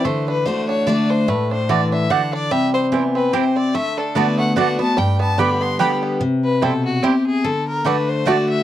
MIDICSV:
0, 0, Header, 1, 5, 480
1, 0, Start_track
1, 0, Tempo, 410397
1, 58, Time_signature, 3, 2, 24, 8
1, 10095, End_track
2, 0, Start_track
2, 0, Title_t, "Fiddle"
2, 0, Program_c, 0, 110
2, 57, Note_on_c, 0, 72, 76
2, 325, Note_off_c, 0, 72, 0
2, 330, Note_on_c, 0, 71, 88
2, 537, Note_on_c, 0, 72, 83
2, 555, Note_off_c, 0, 71, 0
2, 797, Note_off_c, 0, 72, 0
2, 804, Note_on_c, 0, 73, 92
2, 1017, Note_on_c, 0, 74, 82
2, 1035, Note_off_c, 0, 73, 0
2, 1289, Note_on_c, 0, 72, 94
2, 1306, Note_off_c, 0, 74, 0
2, 1509, Note_on_c, 0, 71, 81
2, 1526, Note_off_c, 0, 72, 0
2, 1763, Note_off_c, 0, 71, 0
2, 1770, Note_on_c, 0, 72, 90
2, 1981, Note_on_c, 0, 74, 81
2, 1998, Note_off_c, 0, 72, 0
2, 2248, Note_off_c, 0, 74, 0
2, 2253, Note_on_c, 0, 76, 84
2, 2466, Note_on_c, 0, 78, 88
2, 2483, Note_off_c, 0, 76, 0
2, 2726, Note_off_c, 0, 78, 0
2, 2733, Note_on_c, 0, 74, 94
2, 2939, Note_on_c, 0, 76, 97
2, 2957, Note_off_c, 0, 74, 0
2, 3197, Note_off_c, 0, 76, 0
2, 3204, Note_on_c, 0, 72, 89
2, 3333, Note_off_c, 0, 72, 0
2, 3693, Note_on_c, 0, 71, 84
2, 3901, Note_on_c, 0, 72, 72
2, 3919, Note_off_c, 0, 71, 0
2, 4170, Note_on_c, 0, 74, 85
2, 4188, Note_off_c, 0, 72, 0
2, 4382, Note_on_c, 0, 76, 97
2, 4400, Note_off_c, 0, 74, 0
2, 4653, Note_on_c, 0, 69, 78
2, 4671, Note_off_c, 0, 76, 0
2, 4860, Note_on_c, 0, 74, 82
2, 4877, Note_off_c, 0, 69, 0
2, 5128, Note_off_c, 0, 74, 0
2, 5133, Note_on_c, 0, 78, 92
2, 5329, Note_off_c, 0, 78, 0
2, 5352, Note_on_c, 0, 78, 88
2, 5596, Note_off_c, 0, 78, 0
2, 5615, Note_on_c, 0, 81, 106
2, 5826, Note_on_c, 0, 79, 91
2, 5844, Note_off_c, 0, 81, 0
2, 6082, Note_off_c, 0, 79, 0
2, 6089, Note_on_c, 0, 81, 95
2, 6304, Note_on_c, 0, 83, 92
2, 6322, Note_off_c, 0, 81, 0
2, 6573, Note_on_c, 0, 84, 95
2, 6590, Note_off_c, 0, 83, 0
2, 6777, Note_off_c, 0, 84, 0
2, 6784, Note_on_c, 0, 83, 80
2, 6943, Note_off_c, 0, 83, 0
2, 7531, Note_on_c, 0, 71, 88
2, 7750, Note_on_c, 0, 69, 78
2, 7767, Note_off_c, 0, 71, 0
2, 8007, Note_off_c, 0, 69, 0
2, 8014, Note_on_c, 0, 66, 84
2, 8231, Note_on_c, 0, 67, 68
2, 8248, Note_off_c, 0, 66, 0
2, 8490, Note_off_c, 0, 67, 0
2, 8497, Note_on_c, 0, 68, 84
2, 8708, Note_on_c, 0, 69, 76
2, 8725, Note_off_c, 0, 68, 0
2, 8972, Note_off_c, 0, 69, 0
2, 8977, Note_on_c, 0, 70, 92
2, 9193, Note_on_c, 0, 71, 80
2, 9210, Note_off_c, 0, 70, 0
2, 9461, Note_on_c, 0, 72, 91
2, 9478, Note_off_c, 0, 71, 0
2, 9669, Note_on_c, 0, 74, 81
2, 9687, Note_off_c, 0, 72, 0
2, 9921, Note_off_c, 0, 74, 0
2, 9928, Note_on_c, 0, 76, 93
2, 10095, Note_off_c, 0, 76, 0
2, 10095, End_track
3, 0, Start_track
3, 0, Title_t, "Mandolin"
3, 0, Program_c, 1, 25
3, 1978, Note_on_c, 1, 57, 89
3, 1983, Note_on_c, 1, 66, 85
3, 1989, Note_on_c, 1, 74, 93
3, 1995, Note_on_c, 1, 81, 95
3, 2096, Note_off_c, 1, 57, 0
3, 2099, Note_off_c, 1, 66, 0
3, 2102, Note_off_c, 1, 74, 0
3, 2105, Note_off_c, 1, 81, 0
3, 2458, Note_on_c, 1, 57, 99
3, 2466, Note_on_c, 1, 66, 106
3, 2470, Note_on_c, 1, 74, 104
3, 2475, Note_on_c, 1, 81, 103
3, 2576, Note_off_c, 1, 57, 0
3, 2580, Note_off_c, 1, 66, 0
3, 2582, Note_off_c, 1, 74, 0
3, 2585, Note_off_c, 1, 81, 0
3, 3417, Note_on_c, 1, 60, 88
3, 3423, Note_on_c, 1, 64, 92
3, 3428, Note_on_c, 1, 72, 89
3, 3434, Note_on_c, 1, 79, 94
3, 3536, Note_off_c, 1, 60, 0
3, 3539, Note_off_c, 1, 64, 0
3, 3541, Note_off_c, 1, 72, 0
3, 3544, Note_off_c, 1, 79, 0
3, 3895, Note_on_c, 1, 60, 94
3, 3902, Note_on_c, 1, 64, 89
3, 3906, Note_on_c, 1, 72, 93
3, 3911, Note_on_c, 1, 79, 111
3, 4015, Note_off_c, 1, 60, 0
3, 4018, Note_off_c, 1, 64, 0
3, 4021, Note_off_c, 1, 72, 0
3, 4023, Note_off_c, 1, 79, 0
3, 4855, Note_on_c, 1, 59, 90
3, 4861, Note_on_c, 1, 66, 86
3, 4866, Note_on_c, 1, 74, 91
3, 4870, Note_on_c, 1, 81, 97
3, 4975, Note_off_c, 1, 59, 0
3, 4978, Note_off_c, 1, 66, 0
3, 4981, Note_off_c, 1, 74, 0
3, 4983, Note_off_c, 1, 81, 0
3, 5337, Note_on_c, 1, 59, 93
3, 5343, Note_on_c, 1, 66, 101
3, 5350, Note_on_c, 1, 74, 94
3, 5354, Note_on_c, 1, 81, 106
3, 5456, Note_off_c, 1, 59, 0
3, 5459, Note_off_c, 1, 66, 0
3, 5462, Note_off_c, 1, 74, 0
3, 5465, Note_off_c, 1, 81, 0
3, 6295, Note_on_c, 1, 59, 86
3, 6302, Note_on_c, 1, 67, 87
3, 6307, Note_on_c, 1, 74, 91
3, 6312, Note_on_c, 1, 79, 86
3, 6415, Note_off_c, 1, 59, 0
3, 6419, Note_off_c, 1, 67, 0
3, 6421, Note_off_c, 1, 74, 0
3, 6424, Note_off_c, 1, 79, 0
3, 6776, Note_on_c, 1, 59, 94
3, 6782, Note_on_c, 1, 67, 100
3, 6786, Note_on_c, 1, 74, 93
3, 6792, Note_on_c, 1, 79, 101
3, 6896, Note_off_c, 1, 59, 0
3, 6899, Note_off_c, 1, 67, 0
3, 6901, Note_off_c, 1, 74, 0
3, 6904, Note_off_c, 1, 79, 0
3, 7738, Note_on_c, 1, 60, 78
3, 7744, Note_on_c, 1, 64, 86
3, 7749, Note_on_c, 1, 72, 85
3, 7753, Note_on_c, 1, 79, 99
3, 7857, Note_off_c, 1, 60, 0
3, 7860, Note_off_c, 1, 64, 0
3, 7862, Note_off_c, 1, 72, 0
3, 7864, Note_off_c, 1, 79, 0
3, 8218, Note_on_c, 1, 60, 91
3, 8224, Note_on_c, 1, 64, 88
3, 8232, Note_on_c, 1, 72, 94
3, 8236, Note_on_c, 1, 79, 101
3, 8337, Note_off_c, 1, 60, 0
3, 8340, Note_off_c, 1, 64, 0
3, 8344, Note_off_c, 1, 72, 0
3, 8346, Note_off_c, 1, 79, 0
3, 9181, Note_on_c, 1, 57, 89
3, 9187, Note_on_c, 1, 66, 88
3, 9191, Note_on_c, 1, 74, 94
3, 9197, Note_on_c, 1, 81, 102
3, 9298, Note_off_c, 1, 57, 0
3, 9301, Note_off_c, 1, 66, 0
3, 9303, Note_off_c, 1, 74, 0
3, 9306, Note_off_c, 1, 81, 0
3, 9664, Note_on_c, 1, 57, 105
3, 9669, Note_on_c, 1, 66, 105
3, 9674, Note_on_c, 1, 74, 100
3, 9679, Note_on_c, 1, 81, 99
3, 9780, Note_off_c, 1, 57, 0
3, 9782, Note_off_c, 1, 66, 0
3, 9784, Note_off_c, 1, 74, 0
3, 9787, Note_off_c, 1, 81, 0
3, 10095, End_track
4, 0, Start_track
4, 0, Title_t, "Five-string banjo"
4, 0, Program_c, 2, 105
4, 56, Note_on_c, 2, 57, 79
4, 327, Note_on_c, 2, 62, 54
4, 539, Note_on_c, 2, 50, 57
4, 751, Note_off_c, 2, 57, 0
4, 792, Note_off_c, 2, 62, 0
4, 806, Note_on_c, 2, 62, 58
4, 1004, Note_off_c, 2, 62, 0
4, 1018, Note_on_c, 2, 62, 63
4, 1233, Note_off_c, 2, 50, 0
4, 1275, Note_off_c, 2, 62, 0
4, 1289, Note_on_c, 2, 62, 57
4, 1503, Note_on_c, 2, 57, 76
4, 1756, Note_off_c, 2, 62, 0
4, 1770, Note_on_c, 2, 62, 58
4, 1985, Note_on_c, 2, 50, 60
4, 2195, Note_off_c, 2, 57, 0
4, 2235, Note_off_c, 2, 62, 0
4, 2249, Note_on_c, 2, 62, 58
4, 2448, Note_off_c, 2, 62, 0
4, 2462, Note_on_c, 2, 62, 61
4, 2677, Note_off_c, 2, 50, 0
4, 2713, Note_off_c, 2, 62, 0
4, 2727, Note_on_c, 2, 62, 62
4, 2940, Note_off_c, 2, 62, 0
4, 2941, Note_on_c, 2, 55, 78
4, 3204, Note_on_c, 2, 60, 58
4, 3420, Note_on_c, 2, 52, 57
4, 3635, Note_off_c, 2, 55, 0
4, 3672, Note_off_c, 2, 60, 0
4, 3686, Note_on_c, 2, 60, 57
4, 3901, Note_on_c, 2, 67, 59
4, 4114, Note_off_c, 2, 52, 0
4, 4155, Note_off_c, 2, 60, 0
4, 4169, Note_on_c, 2, 60, 54
4, 4381, Note_off_c, 2, 67, 0
4, 4381, Note_on_c, 2, 57, 75
4, 4382, Note_off_c, 2, 60, 0
4, 4651, Note_on_c, 2, 62, 53
4, 4862, Note_on_c, 2, 59, 58
4, 5075, Note_off_c, 2, 57, 0
4, 5129, Note_on_c, 2, 57, 66
4, 5300, Note_off_c, 2, 62, 0
4, 5338, Note_on_c, 2, 62, 60
4, 5555, Note_off_c, 2, 59, 0
4, 5604, Note_on_c, 2, 59, 57
4, 5779, Note_off_c, 2, 57, 0
4, 5812, Note_on_c, 2, 55, 79
4, 5819, Note_off_c, 2, 59, 0
4, 5820, Note_off_c, 2, 62, 0
4, 6079, Note_on_c, 2, 59, 57
4, 6294, Note_on_c, 2, 50, 58
4, 6511, Note_off_c, 2, 55, 0
4, 6546, Note_off_c, 2, 59, 0
4, 6560, Note_on_c, 2, 59, 59
4, 6778, Note_on_c, 2, 67, 63
4, 6992, Note_off_c, 2, 50, 0
4, 7034, Note_off_c, 2, 59, 0
4, 7048, Note_on_c, 2, 59, 56
4, 7260, Note_off_c, 2, 67, 0
4, 7261, Note_off_c, 2, 59, 0
4, 7744, Note_on_c, 2, 55, 64
4, 7751, Note_on_c, 2, 60, 64
4, 7751, Note_on_c, 2, 64, 62
4, 7860, Note_off_c, 2, 55, 0
4, 7862, Note_off_c, 2, 60, 0
4, 7864, Note_off_c, 2, 64, 0
4, 8225, Note_on_c, 2, 55, 64
4, 8231, Note_on_c, 2, 60, 58
4, 8232, Note_on_c, 2, 64, 62
4, 8342, Note_off_c, 2, 55, 0
4, 8343, Note_off_c, 2, 60, 0
4, 8344, Note_off_c, 2, 64, 0
4, 9190, Note_on_c, 2, 57, 61
4, 9196, Note_on_c, 2, 62, 66
4, 9219, Note_off_c, 2, 62, 0
4, 9304, Note_off_c, 2, 57, 0
4, 9674, Note_on_c, 2, 57, 64
4, 9680, Note_on_c, 2, 62, 62
4, 9703, Note_off_c, 2, 62, 0
4, 9786, Note_off_c, 2, 57, 0
4, 10095, End_track
5, 0, Start_track
5, 0, Title_t, "Steel-string acoustic guitar"
5, 0, Program_c, 3, 25
5, 60, Note_on_c, 3, 50, 86
5, 519, Note_off_c, 3, 50, 0
5, 533, Note_on_c, 3, 50, 82
5, 542, Note_on_c, 3, 57, 80
5, 551, Note_on_c, 3, 62, 83
5, 559, Note_on_c, 3, 66, 91
5, 995, Note_off_c, 3, 50, 0
5, 999, Note_off_c, 3, 57, 0
5, 1004, Note_off_c, 3, 62, 0
5, 1008, Note_off_c, 3, 66, 0
5, 1011, Note_on_c, 3, 50, 83
5, 1023, Note_on_c, 3, 57, 85
5, 1032, Note_on_c, 3, 62, 98
5, 1042, Note_on_c, 3, 66, 96
5, 1474, Note_off_c, 3, 50, 0
5, 1480, Note_off_c, 3, 57, 0
5, 1485, Note_off_c, 3, 62, 0
5, 1490, Note_off_c, 3, 66, 0
5, 1498, Note_on_c, 3, 45, 83
5, 1979, Note_on_c, 3, 52, 83
5, 2417, Note_off_c, 3, 45, 0
5, 2439, Note_off_c, 3, 52, 0
5, 2458, Note_on_c, 3, 50, 85
5, 2918, Note_off_c, 3, 50, 0
5, 2937, Note_on_c, 3, 48, 86
5, 3414, Note_on_c, 3, 59, 82
5, 3857, Note_off_c, 3, 48, 0
5, 3876, Note_off_c, 3, 59, 0
5, 3899, Note_on_c, 3, 48, 87
5, 4359, Note_off_c, 3, 48, 0
5, 4383, Note_on_c, 3, 50, 82
5, 4842, Note_off_c, 3, 50, 0
5, 4856, Note_on_c, 3, 50, 86
5, 4865, Note_on_c, 3, 57, 88
5, 4873, Note_on_c, 3, 59, 93
5, 4881, Note_on_c, 3, 66, 87
5, 5318, Note_off_c, 3, 50, 0
5, 5322, Note_off_c, 3, 57, 0
5, 5326, Note_off_c, 3, 59, 0
5, 5330, Note_off_c, 3, 66, 0
5, 5332, Note_on_c, 3, 50, 83
5, 5343, Note_on_c, 3, 57, 90
5, 5352, Note_on_c, 3, 59, 88
5, 5357, Note_on_c, 3, 66, 91
5, 5588, Note_off_c, 3, 66, 0
5, 5593, Note_off_c, 3, 50, 0
5, 5599, Note_off_c, 3, 57, 0
5, 5602, Note_on_c, 3, 66, 65
5, 5603, Note_off_c, 3, 59, 0
5, 5630, Note_on_c, 3, 59, 48
5, 5810, Note_off_c, 3, 66, 0
5, 5821, Note_on_c, 3, 43, 89
5, 5824, Note_off_c, 3, 59, 0
5, 6291, Note_on_c, 3, 50, 86
5, 6303, Note_on_c, 3, 55, 84
5, 6310, Note_on_c, 3, 59, 88
5, 6320, Note_on_c, 3, 67, 90
5, 6739, Note_off_c, 3, 43, 0
5, 6755, Note_off_c, 3, 50, 0
5, 6761, Note_off_c, 3, 55, 0
5, 6765, Note_off_c, 3, 59, 0
5, 6769, Note_off_c, 3, 67, 0
5, 6773, Note_on_c, 3, 50, 88
5, 6785, Note_on_c, 3, 55, 87
5, 6792, Note_on_c, 3, 59, 91
5, 6799, Note_on_c, 3, 67, 97
5, 7236, Note_off_c, 3, 50, 0
5, 7242, Note_off_c, 3, 55, 0
5, 7245, Note_off_c, 3, 59, 0
5, 7249, Note_off_c, 3, 67, 0
5, 7259, Note_on_c, 3, 48, 85
5, 7747, Note_on_c, 3, 47, 86
5, 8178, Note_off_c, 3, 48, 0
5, 8203, Note_off_c, 3, 47, 0
5, 8229, Note_on_c, 3, 48, 88
5, 8684, Note_off_c, 3, 48, 0
5, 8707, Note_on_c, 3, 50, 87
5, 9161, Note_off_c, 3, 50, 0
5, 9175, Note_on_c, 3, 50, 84
5, 9185, Note_on_c, 3, 57, 82
5, 9196, Note_on_c, 3, 62, 88
5, 9203, Note_on_c, 3, 66, 88
5, 9637, Note_off_c, 3, 50, 0
5, 9642, Note_off_c, 3, 57, 0
5, 9647, Note_off_c, 3, 62, 0
5, 9651, Note_off_c, 3, 66, 0
5, 9656, Note_on_c, 3, 50, 76
5, 9667, Note_on_c, 3, 57, 89
5, 9675, Note_on_c, 3, 62, 86
5, 9685, Note_on_c, 3, 66, 106
5, 10095, Note_off_c, 3, 50, 0
5, 10095, Note_off_c, 3, 57, 0
5, 10095, Note_off_c, 3, 62, 0
5, 10095, Note_off_c, 3, 66, 0
5, 10095, End_track
0, 0, End_of_file